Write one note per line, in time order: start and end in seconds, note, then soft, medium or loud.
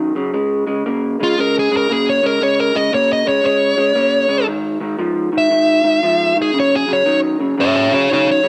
0.00 0.13 F#2 medium
0.00 0.13 D#3 loud
0.15 0.32 F#2 medium
0.15 0.33 C#3 medium
0.34 0.64 C#3 medium
0.34 0.64 G#3 medium
0.67 0.84 C#3 medium
0.67 0.84 G#3 medium
0.86 1.16 C#3 medium
0.86 1.16 A#3 medium
1.20 1.36 C#3 medium
1.20 1.37 G#3 medium
1.20 1.39 F4 loud
1.38 1.68 C#3 medium
1.38 1.68 G#3 medium
1.38 1.56 A#4 medium
1.59 1.74 G#4 medium
1.71 1.88 C#3 medium
1.71 1.88 G#3 medium
1.77 1.92 A#4 medium
1.90 2.19 C#3 medium
1.90 2.20 A#3 medium
1.90 2.08 G#4 medium
2.09 2.25 C#5 medium
2.23 2.39 C#3 medium
2.23 2.40 G#3 medium
2.23 2.42 A#4 medium
2.42 2.71 C#3 medium
2.42 2.71 G#3 medium
2.42 2.59 C#5 medium
2.60 2.76 A#4 medium
2.75 2.91 C#3 medium
2.75 2.91 G#3 medium
2.75 2.93 D#5 medium
2.93 3.23 C#3 medium
2.93 3.23 A#3 medium
2.93 3.10 C#5 medium
3.13 3.28 D#5 medium
3.26 3.42 C#3 medium
3.26 3.42 G#3 medium
3.26 3.45 C#5 medium
3.43 3.74 C#3 medium
3.43 3.74 G#3 medium
3.43 4.46 C#5 loud
3.77 3.94 C#3 medium
3.77 3.94 G#3 medium
3.95 4.26 C#3 medium
3.95 4.26 A#3 medium
4.28 4.46 C#3 medium
4.28 4.46 G#3 medium
4.47 4.77 G#2 medium
4.47 4.78 D#3 medium
4.80 4.97 G#2 medium
4.80 4.98 D#3 medium
4.99 5.29 G#2 medium
4.99 5.29 F3 medium
5.32 5.49 G#2 medium
5.32 5.49 D#3 medium
5.38 6.36 E5 loud
5.51 5.81 G#2 medium
5.51 5.81 D#3 medium
5.84 6.01 G#2 medium
5.84 6.01 D#3 medium
6.03 6.33 G#2 medium
6.03 6.33 F3 loud
6.35 6.52 G#2 medium
6.35 6.53 D#3 medium
6.42 6.56 G#4 medium
6.54 6.84 F#2 medium
6.54 6.84 C#3 medium
6.60 6.74 C#5 medium
6.76 6.91 G#4 medium
6.87 7.04 F#2 medium
6.87 7.05 C#3 medium
6.93 7.19 C#5 loud
7.06 7.36 F#2 medium
7.06 7.36 D#3 loud
7.40 7.56 F#2 medium
7.40 7.57 C#3 medium
7.58 7.88 F#2 medium
7.58 7.88 C#3 medium
7.58 7.75 C#5 medium
7.58 7.75 E5 medium
7.76 7.92 C#5 medium
7.76 7.93 E5 medium
7.91 8.08 F#2 medium
7.91 8.08 C#3 medium
7.91 8.09 G#4 medium
7.91 8.10 C#5 medium
8.10 8.40 F#2 medium
8.10 8.40 D#3 loud
8.10 8.27 G#4 medium
8.10 8.28 C#5 medium
8.32 8.48 C#5 loud
8.43 8.48 F#2 medium
8.43 8.48 C#3 medium